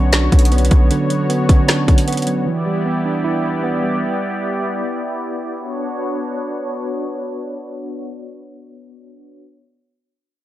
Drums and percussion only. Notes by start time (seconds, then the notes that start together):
0.13 finger snap, snare, closed hi-hat
0.32 kick, closed hi-hat
0.39 closed hi-hat
0.45 closed hi-hat
0.52 closed hi-hat
0.58 closed hi-hat
0.65 closed hi-hat
0.71 kick, closed hi-hat
0.91 closed hi-hat
1.10 closed hi-hat
1.30 closed hi-hat
1.49 kick, closed hi-hat
1.68 finger snap, snare, closed hi-hat
1.88 kick, closed hi-hat
1.98 closed hi-hat
2.08 closed hi-hat
2.13 closed hi-hat
2.17 closed hi-hat
2.22 closed hi-hat
2.27 closed hi-hat